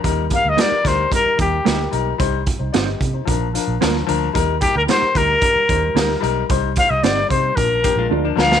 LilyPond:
<<
  \new Staff \with { instrumentName = "Trumpet" } { \time 4/4 \key ees \major \tempo 4 = 111 r8 f''16 ees''16 d''8 c''8 bes'8 g'4 r8 | r1 | r8 g'16 bes'16 c''8 bes'2 r8 | r8 f''16 ees''16 d''8 c''8 bes'4 r8 f''8 | }
  \new Staff \with { instrumentName = "Clean electric guitar" } { \time 4/4 \key ees \major r4 <bes ees' g' bes'>16 r4. r16 <bes ees' g' bes'>16 r8. | r4 <c' ees' g' c''>16 r4. r16 <bes d' f' bes'>16 r8. | r4 <bes ees' g' bes'>16 r4. r16 <bes ees' g' bes'>16 r8. | r4 <c' ees' g' c''>16 r4. r16 <d' f' bes' d''>16 r8. | }
  \new Staff \with { instrumentName = "Grand piano" } { \time 4/4 \key ees \major << { r1 | r8. <ees' c''>16 <f' d''>16 <g' ees''>8 <ees' c''>8 r16 f''8 c'''4 | r1 | r1 | } \\ { <g ees' bes'>8 <g ees' bes'>8 <g ees' bes'>8 <g ees' bes'>8 <g ees' bes'>8 <g ees' bes'>8 <g ees' bes'>8 <g ees' bes'>8 | <g ees' c''>8 r4. <f d' bes'>8 <f d' bes'>8 <f d' bes'>8 <f d' bes'>8 | <g ees' bes'>8 <g ees' bes'>8 <g ees' bes'>8 <g ees' bes'>8 <g ees' bes'>8 <g ees' c''>8 <g ees' bes'>8 <g ees' bes'>8 | <g ees' c''>8 <g ees' c''>8 <g ees' c''>8 <g ees' c''>8 <f d' bes'>8 <f d' bes'>8 <f d' bes'>8 <f d' bes'>8 | } >> }
  \new Staff \with { instrumentName = "Hollow-body jazz guitar" } { \time 4/4 \key ees \major r1 | r1 | r1 | r2 r8 <bes g'>16 <aes f'>8 <f d'>8. | }
  \new Staff \with { instrumentName = "Fingered electric bass" } { \clef bass \time 4/4 \key ees \major ees,8. d,16 r8 d,8 r8 ees,8 d,8 ces,8 | c,8. c,16 g,,8 c8 bes,,8. bes,,16 d,8 d,8 | ees,8. d,16 r8 d,8 r8 ees,8 d,8 ces,8 | c,8. c,16 g,,8 c8 bes,,8. bes,,16 d,8 d,8 | }
  \new DrumStaff \with { instrumentName = "Drums" } \drummode { \time 4/4 <hh bd>8 <hh bd>8 <hh sn>8 <hh bd sn>8 <hh bd>8 <hh bd>8 <hh sn>8 hh8 | <hh bd>8 <hh bd>8 <hh sn>8 <hh bd>8 <hh bd>8 hh8 <hh sn>16 sn16 hh8 | <hh bd>8 <hh bd>8 <hh sn>8 <hh bd>8 <hh bd>8 <hh bd>8 <hh sn>16 sn16 hh8 | <hh bd>8 <hh bd>8 <hh sn>8 <hh bd>8 <hh bd>8 <hh bd>8 r8 sn16 sn16 | }
>>